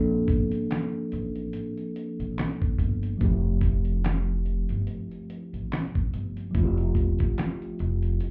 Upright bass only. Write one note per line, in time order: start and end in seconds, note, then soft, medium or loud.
0.00 0.26 A#1 loud
0.28 0.50 G1 loud
1.13 1.51 A1 loud
2.20 2.36 A#1 medium
2.79 3.17 G1 loud
3.21 4.66 F1 loud
4.70 4.86 G1 medium
5.53 5.70 A1 medium
6.13 6.51 G1 medium
6.55 6.93 F1 loud
6.95 7.17 E1 medium
7.80 8.18 F1 loud